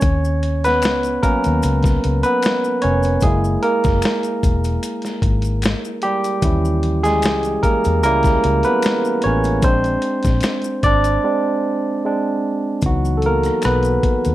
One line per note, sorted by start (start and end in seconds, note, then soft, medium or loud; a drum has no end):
0.00 0.85 D#2 medium
0.00 0.61 C#4 medium
0.00 0.67 C#5 loud
0.00 kick loud
0.00 closed hi-hat medium
0.00 maracas soft
0.25 maracas soft
0.43 closed hi-hat medium
0.64 1.20 B3 medium
0.64 1.19 B4 loud
0.64 snare soft
0.64 closed hi-hat soft
0.64 maracas soft
0.82 1.16 C#2 medium
0.82 finger snap medium
0.82 snare loud
0.82 closed hi-hat medium
0.82 maracas medium
1.03 closed hi-hat soft
1.03 maracas soft
1.23 2.39 F#3 medium
1.23 2.21 A#3 medium
1.23 2.39 C#4 medium
1.23 2.27 A#4 medium
1.23 kick medium
1.23 closed hi-hat medium
1.23 maracas soft
1.44 1.61 D#2 medium
1.44 closed hi-hat medium
1.44 maracas soft
1.63 1.96 C#2 medium
1.63 closed hi-hat medium
1.63 maracas medium
1.83 kick medium
1.83 snare soft
1.83 closed hi-hat soft
1.83 maracas soft
2.04 2.22 C#2 medium
2.04 closed hi-hat medium
2.23 2.79 B3 medium
2.23 2.78 B4 medium
2.23 closed hi-hat soft
2.23 maracas soft
2.42 finger snap medium
2.42 snare loud
2.42 closed hi-hat medium
2.42 maracas medium
2.64 maracas soft
2.82 3.16 F1 medium
2.82 3.20 C#4 medium
2.82 3.19 C#5 medium
2.82 closed hi-hat medium
3.03 closed hi-hat soft
3.03 maracas soft
3.21 3.56 F#1 loud
3.21 3.61 G#3 medium
3.21 3.64 G#4 medium
3.21 kick loud
3.21 closed hi-hat medium
3.21 maracas soft
3.25 3.63 A#3 medium
3.25 4.40 E4 medium
3.44 maracas soft
3.62 5.99 A#3 medium
3.62 6.10 A#4 medium
3.62 closed hi-hat medium
3.84 4.00 F#1 medium
3.84 kick loud
3.84 snare soft
3.84 closed hi-hat soft
3.84 maracas soft
4.02 finger snap medium
4.02 snare loud
4.02 closed hi-hat medium
4.02 maracas medium
4.23 closed hi-hat soft
4.23 maracas soft
4.43 4.76 E1 medium
4.43 kick medium
4.43 closed hi-hat medium
4.43 maracas soft
4.64 closed hi-hat medium
4.64 maracas soft
4.83 closed hi-hat medium
4.83 maracas medium
5.02 snare soft
5.02 closed hi-hat soft
5.02 maracas medium
5.22 5.73 G#1 medium
5.22 kick medium
5.22 closed hi-hat medium
5.42 closed hi-hat soft
5.42 maracas soft
5.62 finger snap medium
5.62 snare loud
5.62 closed hi-hat medium
5.62 maracas medium
5.85 maracas soft
6.02 7.01 G3 medium
6.02 7.07 G4 medium
6.02 closed hi-hat medium
6.24 closed hi-hat soft
6.24 maracas soft
6.42 7.24 D#2 loud
6.42 7.59 E3 medium
6.42 7.59 C#4 soft
6.42 7.60 E4 medium
6.42 kick loud
6.42 closed hi-hat medium
6.42 maracas soft
6.65 maracas soft
6.83 closed hi-hat medium
7.03 7.59 G#3 medium
7.03 7.64 G#4 loud
7.03 snare soft
7.03 closed hi-hat soft
7.03 maracas soft
7.22 7.56 C#2 medium
7.22 finger snap medium
7.22 snare loud
7.22 closed hi-hat medium
7.22 maracas medium
7.43 closed hi-hat soft
7.43 maracas medium
7.63 8.01 A#3 medium
7.63 8.02 A#4 loud
7.63 kick medium
7.63 closed hi-hat medium
7.63 maracas soft
7.84 8.05 E2 medium
7.84 closed hi-hat soft
7.84 maracas soft
8.03 8.37 C#2 loud
8.03 8.40 G3 medium
8.03 8.62 A#3 medium
8.03 8.40 C#4 soft
8.03 8.40 E4 medium
8.03 8.66 A#4 loud
8.03 closed hi-hat medium
8.03 maracas medium
8.23 kick medium
8.23 snare soft
8.23 closed hi-hat soft
8.23 maracas medium
8.44 8.62 C#2 medium
8.44 closed hi-hat medium
8.63 9.20 B3 medium
8.63 9.19 B4 medium
8.63 closed hi-hat soft
8.63 maracas soft
8.82 finger snap medium
8.82 snare loud
8.82 closed hi-hat medium
8.82 maracas medium
9.05 maracas soft
9.22 9.64 A1 medium
9.22 9.64 C#5 loud
9.22 closed hi-hat medium
9.27 9.62 C#4 medium
9.44 closed hi-hat soft
9.44 maracas soft
9.62 9.96 A#1 medium
9.62 10.18 G#3 medium
9.62 10.80 C4 medium
9.62 10.87 C5 loud
9.62 kick loud
9.62 closed hi-hat medium
9.62 maracas medium
9.66 10.19 D4 medium
9.84 closed hi-hat soft
9.84 maracas soft
10.02 closed hi-hat medium
10.23 10.40 A#1 medium
10.23 kick medium
10.23 snare soft
10.23 closed hi-hat soft
10.23 maracas soft
10.41 finger snap medium
10.41 snare loud
10.41 closed hi-hat medium
10.41 maracas medium
10.62 closed hi-hat soft
10.62 maracas soft
10.83 11.16 G#1 medium
10.83 11.24 D4 medium
10.83 11.99 D5 loud
10.83 kick medium
10.83 closed hi-hat medium
10.83 maracas soft
11.04 closed hi-hat soft
11.04 maracas soft
11.24 11.59 G#3 medium
11.24 11.60 C4 soft
11.24 11.60 D4 medium
12.05 12.80 G#3 medium
12.05 12.80 C4 soft
12.05 12.80 D4 medium
12.81 13.49 C#2 medium
12.81 13.38 E3 soft
12.81 13.16 F#3 medium
12.81 13.38 B3 soft
12.81 kick loud
12.81 closed hi-hat medium
12.81 maracas soft
12.86 13.39 D#4 medium
12.86 13.16 F#4 medium
13.05 maracas soft
13.17 13.23 A4 medium
13.22 13.62 A#4 medium
13.22 closed hi-hat medium
13.26 13.62 A#3 medium
13.43 cross-stick soft
13.43 closed hi-hat soft
13.43 maracas soft
13.62 13.97 B1 medium
13.62 14.35 B4 medium
13.62 finger snap medium
13.62 cross-stick loud
13.62 closed hi-hat medium
13.62 maracas medium
13.66 14.35 B3 medium
13.83 closed hi-hat soft
13.83 maracas soft
14.03 kick medium
14.03 closed hi-hat medium
14.25 14.35 D#2 medium
14.25 closed hi-hat soft
14.25 maracas soft